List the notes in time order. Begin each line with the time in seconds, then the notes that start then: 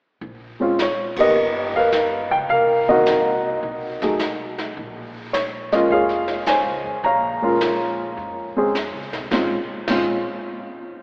0.21 A#1, brush sweep, kick
0.60 G#3 C4 C#4 F4
0.79 C#5, snare, hi-hat pedal
1.16 F#1 A#3 B3 D#4 G4, kick, ride
1.20 A#4 B4 D#5
1.35 G1, brush sweep
1.74 A#4 B4 F5, kick
1.92 snare, hi-hat pedal
2.31 C#2 G5
2.49 C2 A#4 F5, brush sweep, kick
2.88 A#3 C4 D#4 F#4 A#4 D#5
3.06 snare, hi-hat pedal
3.63 B1, brush sweep, kick
4.02 F#3 A3 D#4 G#4, snare
4.19 snare, hi-hat pedal
4.58 snare
4.77 A#1, brush sweep, kick
5.33 C#5, snare, hi-hat pedal
5.72 G#3 A#3 C#4 F4 D#5, snare
5.90 F1 G#4 C#5 F5, brush sweep, kick
6.09 snare
6.28 snare
6.46 C5 C#5 G#5, snare, hi-hat pedal
6.66 C#2
6.84 F2
7.04 A#1 C#5 F5 A#5, brush sweep, kick
7.42 G#3 A#3 C#4 F4
7.61 snare, hi-hat pedal
8.17 F2, brush sweep, kick
8.56 G#3 C4 C#4 G#4
8.75 snare, hi-hat pedal
8.93 C#2
9.12 B1, snare
9.31 A#1 G#3 C4 C#4 F4, kick, snare
9.88 A#1 G#3 C4 C#4 F4, kick, snare, crash